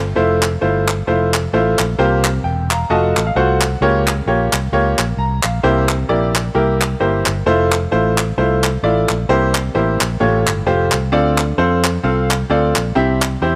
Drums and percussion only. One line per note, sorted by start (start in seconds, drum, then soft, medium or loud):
0.42 clap medium
0.88 clap loud
1.34 clap medium
1.79 clap medium
2.24 clap medium
2.71 clap medium
3.17 clap medium
3.61 clap medium
4.08 clap medium
4.53 clap loud
4.99 clap medium
5.43 clap medium
5.89 clap medium
6.35 clap medium
6.81 clap medium
7.26 clap medium
7.72 clap medium
8.18 clap medium
8.64 clap medium
9.09 clap medium
9.55 clap medium
10.01 clap loud
10.47 clap medium
10.92 clap medium
11.38 clap medium
11.84 clap medium
12.31 clap medium
12.76 clap medium
13.22 clap medium